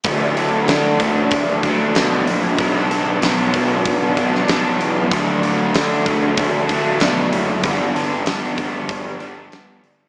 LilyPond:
<<
  \new Staff \with { instrumentName = "Overdriven electric guitar" } { \time 4/4 \key d \major \tempo 4 = 95 <d fis a d'>8 <fis a d'>8 <d fis a d'>8 <fis a d'>4 <fis a d'>8 <d fis a d'>4 | <b, fis b d'>8 <fis b d'>8 <b, fis b d'>8 <fis b d'>4 <fis b d'>8 <b, fis b d'>4 | <d fis a d'>8 <fis a d'>8 <d fis a d'>8 <fis a d'>4 <fis a d'>8 <d fis a d'>4 | <g, d g b d'>8 <g b d'>8 <d g b d'>8 <g b d'>4 <g b d'>8 <d g b d'>4 | }
  \new Staff \with { instrumentName = "Picked electric bass" } { \clef bass \time 4/4 \key d \major d,4 d8 d,8 d,8 d,8 b,8 bes,,8 | b,,8 b,,8 b,,8 b,,8 b,,4 b,,8 e,8 | d,4 d8 d,8 d,8 d,8 b,8 fis,,8 | g,,8 g,,8 g,,8 g,,8 g,,4 g,,8 g,,8 | }
  \new DrumStaff \with { instrumentName = "Drums" } \drummode { \time 4/4 <hho bd>8 hho8 <hho sn>8 <hho bd>8 <hho bd>8 <hho bd>8 <hho sn>8 hho8 | <hho bd>8 hho8 <hho sn>8 <hho bd>8 <hho bd>8 <hho bd>16 sn16 <hho sn>8 hho8 | <hho bd>8 hho8 <hho sn>8 <hho bd>8 <hho bd>8 <hho bd>8 <hho sn>8 hho8 | <hho bd>8 hho8 <hho sn>8 <hho bd>8 <hho bd>8 hho8 <hho sn>8 hho8 | }
>>